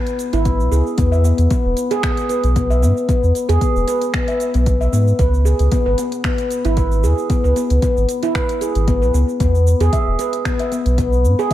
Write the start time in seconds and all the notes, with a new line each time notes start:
0.07 closed hi-hat, shaker
0.19 closed hi-hat, shaker
0.33 G#1 E4, closed hi-hat, shaker
0.45 B3, kick, closed hi-hat, shaker
0.59 B1, shaker
0.72 C#2 G#4, shaker
0.87 shaker
0.98 E2 B3, kick, closed hi-hat, shaker
1.12 E5, shaker
1.24 B3, shaker
1.38 E2, closed hi-hat, shaker
1.50 B3, kick, closed hi-hat, shaker
1.65 E1
1.77 closed hi-hat, shaker
1.91 G#4, closed hi-hat, shaker
2.03 B3, finger snap, kick, closed hi-hat, shaker
2.17 closed hi-hat, shaker
2.29 B4, closed hi-hat, shaker
2.44 B1, closed hi-hat, shaker
2.56 B3, kick, closed hi-hat, shaker
2.70 E5, shaker
2.82 G#2 B3, shaker
2.97 shaker
3.09 B3, kick, closed hi-hat, shaker
3.23 E2, shaker
3.35 closed hi-hat, shaker
3.49 E2 G#4, closed hi-hat, shaker
3.61 B3, kick, closed hi-hat, shaker
3.76 E1, shaker
3.88 B4, closed hi-hat, shaker
4.01 closed hi-hat, shaker
4.14 B3, finger snap, kick, closed hi-hat, shaker
4.28 E5, closed hi-hat, shaker
4.40 closed hi-hat, shaker
4.54 B1 B3, closed hi-hat, shaker
4.66 kick, closed hi-hat, shaker
4.81 E5, shaker
4.93 G#2 B3, shaker
5.07 shaker
5.19 C#2 B4, kick, closed hi-hat, shaker
5.34 shaker
5.45 G#4, shaker
5.59 C#2, closed hi-hat, shaker
5.72 B3, kick, closed hi-hat, shaker
5.86 G#1 B4
5.98 B3, closed hi-hat, shaker
6.12 closed hi-hat, shaker
6.24 B3, finger snap, kick, closed hi-hat, shaker
6.38 closed hi-hat, shaker
6.50 closed hi-hat, shaker
6.65 G#1 E4, closed hi-hat, shaker
6.77 B4, kick, closed hi-hat, shaker
6.92 shaker
7.03 E2 G#4, shaker
7.18 shaker
7.30 B3, kick, closed hi-hat, shaker
7.44 C#2 B4, shaker
7.56 B3, closed hi-hat, shaker
7.70 C#2, closed hi-hat, shaker
7.82 B3, kick, closed hi-hat, shaker
7.97 G#1, shaker
8.09 closed hi-hat, shaker
8.23 E4, closed hi-hat, shaker
8.35 B4, finger snap, kick, closed hi-hat, shaker
8.49 closed hi-hat, shaker
8.61 G#4, closed hi-hat, shaker
8.75 G#1, closed hi-hat, shaker
8.88 B3, kick, closed hi-hat, shaker
9.02 B1 B4, shaker
9.14 C#2 B3, shaker
9.29 shaker
9.40 E2 B3, kick, closed hi-hat, shaker
9.55 shaker
9.67 shaker
9.80 E2 G#4, closed hi-hat, shaker
9.93 E5, kick, closed hi-hat, shaker
10.07 E1
10.19 B4, closed hi-hat, shaker
10.33 closed hi-hat, shaker
10.45 B3, finger snap, kick, closed hi-hat, shaker
10.59 E5, closed hi-hat, shaker
10.72 B3, closed hi-hat, shaker
10.86 B1, closed hi-hat, shaker
10.98 B3, kick, closed hi-hat, shaker
11.13 shaker
11.24 G#2, shaker
11.39 G#4, shaker